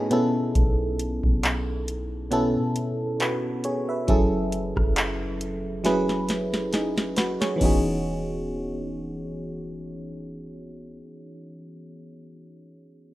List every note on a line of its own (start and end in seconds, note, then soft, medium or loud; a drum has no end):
0.00 0.10 A2 medium
0.00 0.11 A3 medium
0.00 0.11 B3 medium
0.00 0.10 C#4 medium
0.00 0.33 D#4 medium
0.00 0.12 E4 medium
0.00 0.13 F#4 medium
0.00 0.33 G#4 loud
0.00 0.13 A4 medium
0.00 0.13 B4 medium
0.00 0.13 C#5 medium
0.10 1.63 B2 medium
0.10 1.63 B3 medium
0.10 1.63 C#4 medium
0.10 1.64 E4 medium
0.10 1.64 A4 loud
0.10 closed hi-hat medium
0.55 1.21 B1 loud
0.55 kick loud
0.55 closed hi-hat medium
0.99 closed hi-hat medium
1.24 2.57 B1 loud
1.24 kick medium
1.43 clap loud
1.43 closed hi-hat medium
1.88 closed hi-hat medium
2.31 3.83 B2 medium
2.31 3.83 B3 medium
2.31 3.84 C#4 medium
2.31 3.84 E4 medium
2.31 3.21 A4 loud
2.31 closed hi-hat medium
2.56 3.84 B2 loud
2.76 closed hi-hat medium
3.20 3.62 F#4 medium
3.20 3.62 B4 medium
3.20 clap loud
3.20 closed hi-hat medium
3.64 3.87 G#4 medium
3.64 3.87 C#5 medium
3.64 closed hi-hat medium
3.89 4.31 B4 medium
3.89 4.30 E5 medium
4.08 4.74 F#1 loud
4.08 5.60 F#3 medium
4.08 5.60 C#4 medium
4.08 5.61 E4 medium
4.08 5.61 G#4 medium
4.08 5.61 A4 medium
4.08 kick loud
4.08 closed hi-hat medium
4.52 closed hi-hat medium
4.76 7.37 F#1 loud
4.76 kick medium
4.76 cross-stick medium
4.96 clap loud
4.96 closed hi-hat loud
5.41 closed hi-hat medium
5.84 7.36 F#3 medium
5.84 7.37 C#4 medium
5.84 6.73 E4 medium
5.84 6.72 G#4 medium
5.84 6.74 B4 loud
5.84 snare medium
5.84 closed hi-hat medium
6.09 snare medium
6.29 snare medium
6.29 closed hi-hat medium
6.54 snare medium
6.73 7.15 D#4 medium
6.73 7.15 G#4 medium
6.73 snare medium
6.73 closed hi-hat medium
6.98 snare medium
7.16 7.40 F#4 medium
7.16 7.40 B4 medium
7.16 snare loud
7.16 closed hi-hat medium
7.41 7.64 G#4 medium
7.41 7.83 C#5 medium
7.41 snare loud
7.56 10.96 E3 medium
7.56 10.98 B3 medium
7.56 11.00 C#4 medium
7.61 11.01 E1 loud
7.61 11.02 D#4 medium
7.61 11.04 F#4 medium
7.61 kick loud
7.61 crash medium
7.65 11.05 G#4 medium